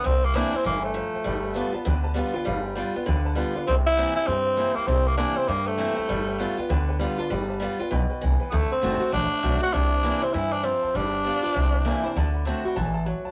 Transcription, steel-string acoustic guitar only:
0.04 0.62 C3 loud
0.34 0.52 E3 medium
0.34 0.52 A#3 loud
0.34 0.53 C4 loud
0.34 0.51 E4 loud
0.52 0.65 C4 medium
0.52 0.64 E4 medium
0.64 0.94 E3 medium
0.94 1.24 F3 medium
1.24 1.53 G3 medium
1.54 1.72 G3 loud
1.54 1.73 B3 loud
1.54 1.71 F4 loud
1.72 1.86 B3 soft
1.72 1.84 F4 medium
1.85 2.44 D3 medium
2.14 2.33 G3 medium
2.14 2.33 B3 medium
2.14 2.32 F4 medium
2.33 2.46 B3 medium
2.33 2.45 F4 medium
2.45 2.74 G3 medium
2.75 2.94 G3 medium
2.75 2.94 B3 medium
2.75 2.92 F4 loud
2.94 3.07 B3 medium
2.94 3.06 F4 medium
3.06 3.65 D3 medium
3.35 3.54 G3 medium
3.35 3.55 B3 medium
3.35 3.54 F4 medium
3.55 3.68 B3 medium
3.55 3.67 F4 medium
3.67 4.26 C3 medium
3.97 4.15 E3 medium
3.97 4.15 A#3 loud
3.97 4.16 C4 loud
3.97 4.14 E4 loud
4.15 4.28 C4 soft
4.15 4.27 E4 medium
4.26 4.85 G2 medium
4.56 4.75 E3 medium
4.56 4.75 A#3 medium
4.56 4.76 C4 medium
4.56 4.74 E4 medium
4.75 4.89 C4 medium
4.75 4.87 E4 medium
4.88 5.46 C3 medium
5.17 5.36 E3 medium
5.17 5.36 A#3 medium
5.17 5.37 C4 loud
5.17 5.35 E4 loud
5.36 5.49 C4 medium
5.36 5.48 E4 medium
5.49 6.07 G2 medium
5.77 5.96 E3 medium
5.77 5.97 A#3 medium
5.77 5.97 C4 medium
5.77 5.94 E4 medium
5.95 6.09 C4 medium
5.95 6.08 E4 medium
6.09 6.37 G3 medium
6.38 6.57 G3 medium
6.38 6.57 B3 medium
6.38 6.56 F4 loud
6.57 6.70 B3 medium
6.57 6.69 F4 medium
6.70 7.28 D3 loud
6.99 7.18 G3 medium
6.99 7.18 B3 medium
6.99 7.17 F4 medium
7.18 7.31 B3 medium
7.18 7.30 F4 medium
7.30 7.59 G3 medium
7.60 7.78 G3 medium
7.60 7.79 B3 loud
7.60 7.78 F4 loud
7.79 7.92 B3 medium
7.79 7.91 F4 medium
7.91 8.20 B2 medium
8.21 8.51 E3 medium
8.52 8.80 D3 medium
8.81 9.00 D3 medium
8.81 9.00 A3 medium
8.81 9.01 C4 loud
8.81 8.98 F#4 loud
8.99 9.13 C4 medium
8.99 9.12 F#4 medium
9.12 9.71 A2 medium
9.42 9.60 D3 medium
9.42 9.61 A3 medium
9.42 9.61 C4 medium
9.42 9.59 F#4 medium
9.60 9.74 C4 medium
9.60 9.72 F#4 medium
9.74 10.32 C3 medium
10.03 10.21 E3 medium
10.03 10.22 A#3 loud
10.03 10.22 C4 loud
10.03 10.20 E4 medium
10.22 10.34 C4 medium
10.22 10.33 E4 medium
10.34 10.63 E3 medium
10.64 10.93 F3 medium
10.95 11.23 G3 medium
11.24 11.42 G3 medium
11.24 11.43 B3 medium
11.24 11.41 F4 loud
11.43 11.55 B3 medium
11.43 11.54 F4 medium
11.54 12.13 C3 medium
11.85 12.03 E3 medium
11.85 12.03 A#3 medium
11.85 12.04 C4 medium
11.85 12.03 E4 medium
12.04 12.16 C4 medium
12.04 12.15 E4 medium
12.16 12.44 D3 medium
12.45 12.63 D3 medium
12.45 12.64 A3 medium
12.45 12.64 C4 loud
12.45 12.64 F#4 medium
12.65 12.77 C4 medium
12.65 12.76 F#4 medium
12.76 13.05 E3 medium
13.06 13.31 F#3 medium

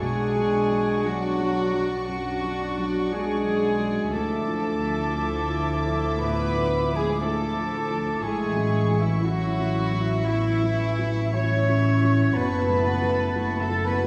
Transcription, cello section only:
0.01 1.02 G#4 loud
1.04 2.07 F#4 loud
2.08 3.09 F#4 loud
3.12 4.12 G#4 loud
4.13 6.18 A4 medium
6.18 6.95 B4 loud
6.96 7.21 G#4 loud
7.21 8.22 A4 loud
8.22 8.98 G#4 loud
8.99 9.24 E4 loud
9.24 10.26 F#4 loud
10.26 11.34 E4 loud
11.34 12.33 C#5 loud
12.35 13.60 B4 loud
13.60 13.85 A4 loud
13.86 14.07 B4 loud

